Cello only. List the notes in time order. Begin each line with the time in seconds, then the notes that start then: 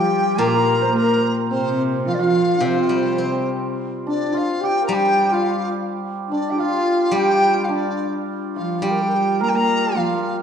Already playing: G3
0.39 A#3
0.92 A#3
1.51 C3
2.05 F3
2.19 F3
2.62 C3
8.56 F3
8.85 G3
9.42 A#3
9.53 A#3
9.96 F3